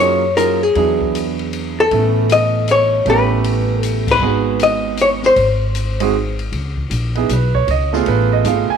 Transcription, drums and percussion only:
0.37 hi-hat pedal medium
0.37 ride medium
0.75 kick soft
0.75 ride medium
1.01 kick soft
1.15 hi-hat pedal medium
1.15 ride medium
1.39 ride soft
1.53 ride medium
1.91 kick soft
1.91 ride medium
2.29 hi-hat pedal medium
2.29 ride medium
2.68 hi-hat pedal medium
2.68 ride medium
3.06 kick soft
3.06 ride medium
3.44 ride medium
3.83 hi-hat pedal medium
3.83 ride medium
4.07 kick medium
4.07 crash medium
4.59 hi-hat pedal medium
4.59 ride medium
4.97 hi-hat pedal medium
4.97 ride medium
5.23 snare soft
5.36 kick soft
5.36 ride medium
5.75 hi-hat pedal medium
5.75 ride medium
6.00 ride medium
6.39 ride soft
6.52 kick soft
6.52 ride medium
6.77 kick soft
6.91 kick soft
6.91 hi-hat pedal medium
6.91 ride medium
7.15 ride soft
7.29 kick soft
7.29 hi-hat pedal medium
7.29 ride medium
7.54 kick soft
7.68 kick soft
7.68 ride medium
7.93 snare soft
8.06 kick soft
8.06 ride medium
8.45 kick soft
8.45 hi-hat pedal soft
8.45 ride medium

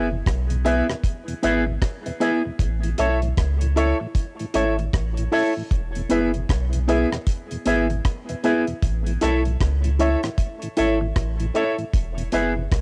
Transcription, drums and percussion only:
0.26 kick loud
0.26 cross-stick loud
0.26 closed hi-hat loud
0.50 closed hi-hat medium
0.66 closed hi-hat medium
0.90 cross-stick medium
1.04 kick loud
1.04 closed hi-hat loud
1.28 closed hi-hat medium
1.43 closed hi-hat medium
1.82 kick loud
1.82 cross-stick loud
1.82 closed hi-hat medium
2.06 closed hi-hat medium
2.21 closed hi-hat medium
2.59 kick loud
2.59 closed hi-hat loud
2.83 closed hi-hat medium
2.98 closed hi-hat loud
3.22 closed hi-hat soft
3.37 kick loud
3.37 cross-stick loud
3.37 closed hi-hat loud
3.61 closed hi-hat medium
3.77 closed hi-hat medium
4.15 kick loud
4.15 closed hi-hat loud
4.39 closed hi-hat soft
4.54 closed hi-hat medium
4.79 closed hi-hat soft
4.93 kick loud
4.93 cross-stick loud
4.93 closed hi-hat loud
5.17 closed hi-hat medium
5.32 open hi-hat medium
5.71 kick loud
5.71 closed hi-hat loud
5.95 closed hi-hat medium
6.10 closed hi-hat medium
6.34 closed hi-hat soft
6.49 kick loud
6.49 cross-stick loud
6.49 closed hi-hat loud
6.73 closed hi-hat medium
6.89 closed hi-hat medium
7.12 cross-stick medium
7.26 kick loud
7.26 closed hi-hat loud
7.51 closed hi-hat soft
7.65 closed hi-hat medium
7.90 closed hi-hat soft
8.05 kick loud
8.05 cross-stick loud
8.05 closed hi-hat medium
8.29 closed hi-hat medium
8.44 closed hi-hat medium
8.67 closed hi-hat soft
8.83 kick loud
8.83 closed hi-hat loud
9.07 closed hi-hat medium
9.21 cross-stick medium
9.21 closed hi-hat loud
9.45 closed hi-hat soft
9.61 kick loud
9.61 cross-stick loud
9.61 closed hi-hat loud
9.84 closed hi-hat medium
10.00 closed hi-hat medium
10.23 cross-stick medium
10.23 closed hi-hat soft
10.38 kick loud
10.38 closed hi-hat medium
10.62 closed hi-hat medium
10.77 closed hi-hat loud
11.16 kick loud
11.16 cross-stick loud
11.16 closed hi-hat loud
11.40 closed hi-hat medium
11.55 closed hi-hat medium
11.78 closed hi-hat soft
11.94 kick loud
11.94 closed hi-hat loud
12.18 closed hi-hat medium
12.32 closed hi-hat medium
12.72 kick loud
12.72 cross-stick loud
12.72 closed hi-hat loud

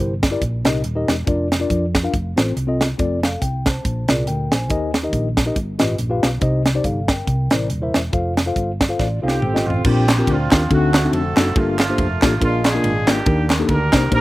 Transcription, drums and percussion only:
0.23 kick medium
0.23 snare loud
0.23 closed hi-hat medium
0.42 kick medium
0.42 closed hi-hat medium
0.65 snare loud
0.65 closed hi-hat medium
0.84 closed hi-hat medium
1.08 snare loud
1.08 closed hi-hat medium
1.27 kick loud
1.27 closed hi-hat medium
1.52 snare loud
1.52 closed hi-hat medium
1.70 kick medium
1.70 closed hi-hat medium
1.95 kick medium
1.95 snare loud
1.95 closed hi-hat medium
2.14 kick medium
2.14 closed hi-hat medium
2.37 snare loud
2.37 closed hi-hat medium
2.57 closed hi-hat medium
2.81 snare loud
2.81 closed hi-hat medium
2.99 kick loud
2.99 closed hi-hat medium
3.23 snare medium
3.23 closed hi-hat medium
3.42 kick medium
3.42 closed hi-hat medium
3.66 kick medium
3.66 snare loud
3.66 closed hi-hat medium
3.85 kick medium
3.85 closed hi-hat medium
4.08 snare loud
4.08 closed hi-hat medium
4.27 closed hi-hat medium
4.52 snare loud
4.52 closed hi-hat medium
4.70 kick loud
4.70 closed hi-hat medium
4.94 snare loud
4.94 closed hi-hat medium
5.13 kick medium
5.13 closed hi-hat medium
5.37 kick medium
5.37 snare loud
5.37 closed hi-hat medium
5.56 kick medium
5.56 closed hi-hat medium
5.79 snare loud
5.79 closed hi-hat medium
5.98 closed hi-hat medium
6.23 snare loud
6.23 closed hi-hat medium
6.41 kick loud
6.41 closed hi-hat medium
6.66 snare loud
6.66 closed hi-hat medium
6.84 kick medium
6.84 closed hi-hat medium
7.08 kick medium
7.08 snare loud
7.08 closed hi-hat medium
7.27 kick medium
7.27 closed hi-hat medium
7.50 snare loud
7.50 closed hi-hat medium
7.70 closed hi-hat medium
7.94 snare loud
7.94 closed hi-hat medium
8.13 kick loud
8.13 closed hi-hat medium
8.37 snare loud
8.37 closed hi-hat medium
8.56 kick medium
8.56 closed hi-hat medium
8.81 kick medium
8.81 snare loud
8.81 closed hi-hat medium
8.99 kick medium
8.99 snare soft
9.28 snare medium
9.42 mid tom medium
9.56 snare medium
9.70 floor tom medium
9.84 kick loud
9.84 crash medium
10.09 snare loud
10.09 clap loud
10.09 ride medium
10.27 kick medium
10.27 ride medium
10.51 kick loud
10.51 snare loud
10.51 clap medium
10.51 ride medium
10.71 kick loud
10.71 ride medium
10.94 snare loud
10.94 clap medium
10.94 ride medium
11.13 ride medium
11.37 snare loud
11.37 clap loud
11.37 ride medium
11.56 kick loud
11.56 ride medium
11.79 snare loud
11.79 clap loud
11.79 ride medium
11.98 kick medium
11.98 ride medium
12.22 kick loud
12.22 snare loud
12.22 clap medium
12.22 ride medium
12.42 kick loud
12.42 ride medium
12.64 snare loud
12.64 clap medium
12.64 ride medium
12.84 ride medium
13.07 snare loud
13.07 clap loud
13.07 ride medium
13.26 kick loud
13.26 ride medium
13.50 snare loud
13.50 clap loud
13.50 ride medium
13.69 kick medium
13.69 ride medium
13.93 kick loud
13.93 snare loud
13.93 clap medium
13.93 ride medium
14.12 kick loud
14.12 ride medium

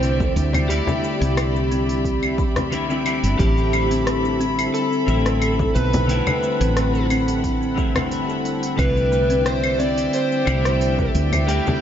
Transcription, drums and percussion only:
0.03 open hi-hat soft
0.03 shaker soft
0.20 kick loud
0.20 frame drum medium
0.20 shaker soft
0.36 open hi-hat soft
0.36 shaker medium
0.53 open hi-hat soft
0.53 frame drum loud
0.53 claves medium
0.53 shaker soft
0.70 open hi-hat medium
0.70 shaker soft
0.87 frame drum medium
0.87 shaker soft
1.04 shaker medium
1.22 open hi-hat soft
1.22 shaker soft
1.37 cross-stick medium
1.37 open hi-hat medium
1.37 claves medium
1.37 shaker soft
1.56 shaker soft
1.71 open hi-hat soft
1.71 shaker medium
1.89 open hi-hat soft
1.89 shaker soft
2.05 kick medium
2.05 open hi-hat medium
2.05 shaker soft
2.23 claves medium
2.23 shaker soft
2.38 kick loud
2.38 shaker medium
2.56 cross-stick medium
2.56 open hi-hat soft
2.56 frame drum loud
2.56 shaker soft
2.72 open hi-hat medium
2.72 shaker soft
2.90 shaker soft
3.06 open hi-hat soft
3.06 claves medium
3.06 shaker medium
3.24 open hi-hat medium
3.24 shaker soft
3.39 kick loud
3.39 open hi-hat soft
3.39 shaker soft
3.58 shaker soft
3.73 claves medium
3.73 shaker medium
3.91 open hi-hat soft
3.91 shaker soft
4.07 cross-stick medium
4.07 open hi-hat soft
4.07 shaker soft
4.25 shaker soft
4.41 open hi-hat soft
4.41 shaker medium
4.59 open hi-hat soft
4.59 claves medium
4.59 shaker soft
4.75 open hi-hat medium
4.75 shaker soft
4.93 shaker soft
5.08 shaker medium
5.26 cross-stick medium
5.26 open hi-hat soft
5.26 shaker soft
5.42 open hi-hat medium
5.42 claves medium
5.42 shaker soft
5.59 kick loud
5.59 frame drum medium
5.59 shaker soft
5.75 open hi-hat soft
5.75 shaker medium
5.93 open hi-hat soft
5.93 frame drum loud
5.93 shaker soft
6.09 open hi-hat medium
6.09 shaker soft
6.27 frame drum medium
6.27 claves medium
6.27 shaker soft
6.43 shaker medium
6.61 open hi-hat soft
6.61 shaker soft
6.77 cross-stick medium
6.77 open hi-hat medium
6.77 shaker soft
6.95 shaker soft
7.10 open hi-hat soft
7.10 claves medium
7.10 shaker medium
7.28 open hi-hat soft
7.28 shaker soft
7.44 kick medium
7.44 open hi-hat medium
7.44 shaker soft
7.62 shaker soft
7.78 kick loud
7.78 shaker medium
7.96 cross-stick medium
7.96 open hi-hat soft
7.96 frame drum loud
7.96 claves medium
7.96 shaker soft
8.11 open hi-hat medium
8.11 shaker soft
8.29 shaker soft
8.45 open hi-hat soft
8.45 shaker medium
8.63 open hi-hat medium
8.63 shaker soft
8.79 kick loud
8.79 open hi-hat medium
8.79 claves medium
8.79 shaker soft
8.97 shaker soft
9.12 shaker medium
9.30 open hi-hat soft
9.30 shaker soft
9.46 cross-stick medium
9.46 open hi-hat medium
9.46 shaker soft
9.64 claves medium
9.64 shaker soft
9.80 open hi-hat soft
9.80 shaker medium
9.98 open hi-hat soft
9.98 shaker soft
10.13 open hi-hat medium
10.13 shaker soft
10.32 shaker soft
10.47 claves medium
10.47 shaker medium
10.65 cross-stick medium
10.65 open hi-hat soft
10.65 shaker soft
10.81 open hi-hat medium
10.81 shaker soft
10.99 kick medium
10.99 frame drum medium
10.99 shaker soft
11.15 open hi-hat soft
11.15 shaker medium
11.32 open hi-hat medium
11.32 frame drum medium
11.32 claves medium
11.32 shaker soft
11.49 open hi-hat medium
11.49 shaker soft
11.67 frame drum loud
11.67 shaker soft

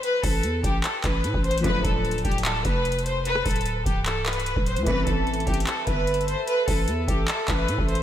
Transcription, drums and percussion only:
0.03 closed hi-hat medium
0.23 kick loud
0.23 open hi-hat medium
0.43 closed hi-hat medium
0.64 kick loud
0.64 closed hi-hat medium
0.84 clap loud
0.84 closed hi-hat medium
1.04 kick loud
1.04 clap loud
1.04 closed hi-hat medium
1.24 closed hi-hat medium
1.34 kick loud
1.44 closed hi-hat soft
1.51 closed hi-hat medium
1.58 closed hi-hat medium
1.64 kick loud
1.64 closed hi-hat medium
1.85 kick loud
1.85 closed hi-hat medium
2.05 closed hi-hat soft
2.11 closed hi-hat medium
2.18 closed hi-hat medium
2.25 kick loud
2.25 closed hi-hat medium
2.31 closed hi-hat medium
2.38 closed hi-hat medium
2.45 clap loud
2.45 closed hi-hat medium
2.65 kick loud
2.65 closed hi-hat medium
2.85 closed hi-hat medium
2.92 closed hi-hat medium
2.99 closed hi-hat medium
3.06 closed hi-hat medium
3.25 closed hi-hat medium
3.35 cross-stick loud
3.46 kick loud
3.46 closed hi-hat medium
3.46 open hi-hat medium
3.51 closed hi-hat medium
3.56 closed hi-hat medium
3.61 closed hi-hat medium
3.66 closed hi-hat medium
3.86 kick loud
3.86 closed hi-hat medium
4.06 clap loud
4.06 closed hi-hat medium
4.26 clap loud
4.26 closed hi-hat medium
4.33 closed hi-hat medium
4.40 closed hi-hat medium
4.46 closed hi-hat medium
4.56 kick loud
4.66 closed hi-hat medium
4.76 closed hi-hat medium
4.86 kick loud
4.86 closed hi-hat medium
5.07 kick loud
5.07 closed hi-hat medium
5.27 closed hi-hat soft
5.34 closed hi-hat medium
5.40 closed hi-hat medium
5.47 kick loud
5.47 closed hi-hat medium
5.54 closed hi-hat medium
5.60 closed hi-hat medium
5.67 clap loud
5.67 closed hi-hat medium
5.87 kick loud
5.87 closed hi-hat medium
6.07 closed hi-hat medium
6.14 closed hi-hat medium
6.21 closed hi-hat medium
6.28 closed hi-hat medium
6.48 closed hi-hat medium
6.68 kick loud
6.68 open hi-hat medium
6.88 closed hi-hat medium
7.08 kick loud
7.08 closed hi-hat loud
7.28 clap loud
7.28 closed hi-hat medium
7.48 kick medium
7.48 clap loud
7.48 closed hi-hat medium
7.68 closed hi-hat medium
7.78 kick loud
7.88 closed hi-hat soft
7.95 closed hi-hat medium

